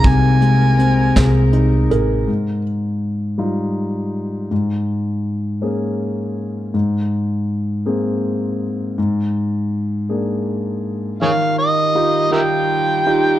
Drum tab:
HH |xxxxxx|------|------|------|
SD |---o--|------|------|------|
BD |o--o--|------|------|------|

HH |------|------|
SD |------|------|
BD |------|------|